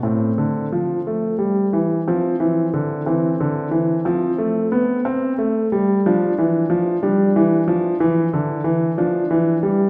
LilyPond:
<<
  \new Staff \with { instrumentName = "Grand piano" } { \time 6/8 \key f \lydian \tempo 4. = 60 c'2. | c'4. c'4. | c'2. | \key d \dorian d'4. d'4. |
e'4. d'4. | }
  \new Staff \with { instrumentName = "Grand piano" } { \clef bass \time 6/8 \key f \lydian a,8 d8 f8 a8 g8 e8 | f8 e8 d8 e8 d8 e8 | f8 a8 b8 c'8 a8 g8 | \key d \dorian f8 e8 f8 g8 e8 f8 |
e8 d8 e8 f8 e8 g8 | }
>>